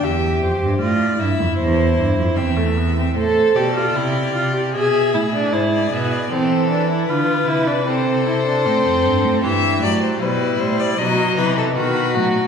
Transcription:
<<
  \new Staff \with { instrumentName = "Violin" } { \time 4/4 \key c \major \tempo 4 = 77 e''8 c''8 d''8 e''8 c''4 e''4 | \key a \minor c''8 d''4. e''4 c''16 d''16 e''16 d''16 | c''8 b'4. a'2 | e''8 d''16 c''16 b'8 c''16 d''16 dis''8 b'16 a'16 b'8 fis'8 | }
  \new Staff \with { instrumentName = "Violin" } { \time 4/4 \key c \major r1 | \key a \minor a'4 g'4 gis'2 | a'4 b'4 c''2 | g'4 e'4 dis'4 fis'4 | }
  \new Staff \with { instrumentName = "Viola" } { \time 4/4 \key c \major g'4 f'8 e'4. c'16 a16 b16 c'16 | \key a \minor a'8 g'16 f'16 e'8 f'16 g'16 gis'8 e'16 d'16 e'8 b8 | c'8 d'16 e'16 f'8 e'16 d'16 c'8 e'16 d'16 c'4 | e8 fis8 g8 g8 fis8 e8 dis8 fis8 | }
  \new Staff \with { instrumentName = "Cello" } { \clef bass \time 4/4 \key c \major e,8 f,16 g,16 a,8 g,16 f,16 e,8 g,16 f,16 e,4 | \key a \minor a,8 b,8 c8 c8 b,8 a,8 gis,8 b,8 | e4 d8 c4. a,16 f,16 g,16 a,16 | g,8 a,8 b,8 a,8 b,8 c8 b,8 a,8 | }
>>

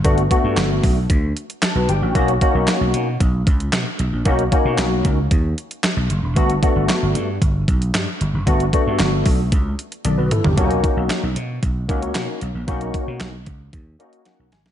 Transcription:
<<
  \new Staff \with { instrumentName = "Tine electric piano" } { \time 4/4 \key b \major \tempo 4 = 114 << { r2. a''16 <fis' b'>16 <d' g' g''>16 <cis' fis'>16~ | <cis' fis'>16 r2. r8. | r1 | r1 |
r2. <a' d''>16 <fis' b'>16 <e' a'>16 <d' g'>16~ | <d' g'>16 r2. r8. | r2 r8 dis''8 fis''8 gis''8 | } \\ { <a b d' fis'>8 <a b d' fis'>4~ <a b d' fis'>16 r2 r16 | <ais cis' dis' fis'>8 <ais cis' dis' fis'>4~ <ais cis' dis' fis'>16 r2 r16 | <ais cis' dis' fis'>8 <ais cis' dis' fis'>4~ <ais cis' dis' fis'>16 r2 r16 | <a b d' fis'>8 <a b d' fis'>4~ <a b d' fis'>16 r2 r16 |
<a b d' fis'>8 <a b d' fis'>4~ <a b d' fis'>16 r2 r16 | <ais cis' d' dis' fis'>4~ <ais cis' d' dis' fis'>16 r4 r16 <ais cis' dis' fis'>4 r8 | <ais cis' dis' fis'>4~ <ais cis' dis' fis'>16 r4 r16 <ais cis' dis' fis'>4 r8 | } >> }
  \new Staff \with { instrumentName = "Slap bass" } { \clef bass \time 4/4 \key b \major g,,8 r16 g,16 g,,8 b,,8 d,8 r8. b,,16 g,,16 a,,16 | b,,8 r16 b,,16 r16 b,,16 b,8 b,,8 cis,8 b,16 r16 b,,16 ais,,16 | b,,8 r16 b,16 b,,8 cis,8 dis,8 r8. b,,16 fis,,16 e,,16 | g,,8 r16 g,,16 r16 g,,16 g,8 g,,8 b,,8 g,16 r16 g,,16 fis,,16 |
g,,8 r16 g,16 g,,8 b,,8 cis,8 r8 b,,16 b,,16 r16 g,,16 | b,,8 r16 b,,16 r16 b,,16 b,8 b,,8 cis,8 b,16 r16 b,,16 ais,,16 | b,,8 r16 b,16 b,,8 cis,8 dis,8 r8. b,,16 gis,,16 ais,,16 | }
  \new DrumStaff \with { instrumentName = "Drums" } \drummode { \time 4/4 <hh bd>16 hh16 <hh bd>8 <hc hh sn>8 <hho bd>8 <hh bd>8 hh16 hh16 <hc hh sn>8 hh8 | <hh bd>16 hh16 <hh bd>8 <hc hh sn>8 hh8 <hh bd>8 <hh bd>16 hh16 <hc hh sn>8 hh8 | <hh bd>16 hh16 <hh bd>8 <hc hh sn>8 <hh bd>8 <hh bd>8 hh16 hh16 <hc hh sn>8 hh8 | <hh bd>16 hh16 <hh bd>8 <hc hh sn>8 hh8 <hh bd>8 <hh bd>16 hh16 <hc hh sn>8 hh8 |
<hh bd>16 hh16 <hh bd>8 <hc hh sn>8 <hho bd>8 <hh bd>8 hh16 hh16 <hh tommh>8 <hh toml>16 tomfh16 | <hh bd>16 hh16 <hh bd>8 <hc hh sn>8 hh8 <hh bd>8 <hh bd>16 hh16 <hc hh sn>8 hh8 | <hh bd>16 hh16 <hh bd>8 <hc hh sn>8 <hh bd>8 <hh bd>8 hh16 hh16 <hh sn>8 <hh sn>16 sn16 | }
>>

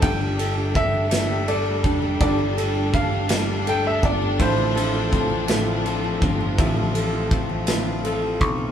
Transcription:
<<
  \new Staff \with { instrumentName = "Grand piano" } { \time 6/8 \key g \mixolydian \tempo 4. = 55 g''4 e''4 d''4 | d''4 f''4 g''16 e''16 d''8 | c''2.~ | c''2 r4 | }
  \new Staff \with { instrumentName = "Nylon-string guitar" } { \time 6/8 \key g \mixolydian g16 g'16 a'16 g'16 d'16 g'16 g16 g'16 a'16 g'16 d'16 g'16 | g16 g'16 a'16 g'16 d'16 g'16 g16 g'16 a'16 g'16 d'16 g'16 | a,16 f'16 a'16 f'16 c'16 f'16 a,16 f'16 a'16 f'16 c'16 f'16 | a,16 f'16 a'16 f'16 c'16 f'16 a,16 f'16 a'16 f'16 c'16 f'16 | }
  \new Staff \with { instrumentName = "Clean electric guitar" } { \time 6/8 \key g \mixolydian <g d' g' a'>8 <d' g' a'>8 <g d' g' a'>8 <g d' g' a'>8 <g d' g' a'>8 <d' g' a'>8 | <g d' g' a'>8 <d' g' a'>8 <g d' g' a'>8 <g d' g' a'>8 <g d' g' a'>8 <d' g' a'>8 | <a, d a c' f' a'>8 <a c' f' a'>8 <a c' f' a'>8 <a, d a c' f' a'>8 <a c' f' a'>8 <a c' f' a'>8 | <a, d a c' f' a'>8 <a c' f' a'>8 <a c' f' a'>8 <a, d a c' f' a'>8 <a c' f' a'>8 <a c' f' a'>8 | }
  \new Staff \with { instrumentName = "String section" } { \clef bass \time 6/8 \key g \mixolydian << { <a d'>2.~ | <a d'>2.~ | <a d'>2.~ | <a d'>2. | } \\ { g2.~ | g2. | f2.~ | f2. | } >> }
  \new Staff \with { instrumentName = "Fingered electric bass" } { \clef bass \time 6/8 \key g \mixolydian g,,2~ g,,8 f,,8 | g,,2~ g,,8 g,,8 | a,,2~ a,,8 g,,8 | a,,2~ a,,8 b,,8 | }
  \new DrumStaff \with { instrumentName = "Drums" } \drummode { \time 6/8 <bd cymr>8 cymr8 <bd cymr>8 <cymr sn>8 cymr8 <bd cymr>8 | <bd cymr>8 cymr8 <bd cymr>8 <cymr sn>8 cymr8 <bd cymr>8 | <bd cymr>8 cymr8 <bd cymr>8 <cymr sn>8 cymr8 <bd cymr>8 | <bd cymr>8 cymr8 <bd cymr>8 <cymr sn>8 cymr8 <bd cymr>8 | }
>>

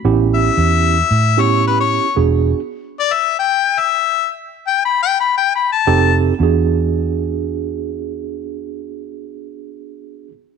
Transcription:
<<
  \new Staff \with { instrumentName = "Harmonica" } { \time 4/4 \key e \mixolydian \tempo 4 = 113 r8 e''2 cis''8 b'16 cis''8. | r4. d''16 e''8 g''8. e''4 | \tuplet 3/2 { r4 g''8 b''8 g''8 b''8 g''8 b''8 a''8~ } a''8 r8 | r1 |
r1 | }
  \new Staff \with { instrumentName = "Tine electric piano" } { \time 4/4 \key e \mixolydian <b cis' e' g'>4. r4 <b cis' e' g'>4. | <b d' fis' gis'>4 r2. | r2. <c' ees' g' a'>4 | <b d' fis' gis'>1~ |
<b d' fis' gis'>1 | }
  \new Staff \with { instrumentName = "Fingered electric bass" } { \clef bass \time 4/4 \key e \mixolydian a,,4 e,4 a,2 | e,,4 r2. | r2. f,,4 | e,1~ |
e,1 | }
>>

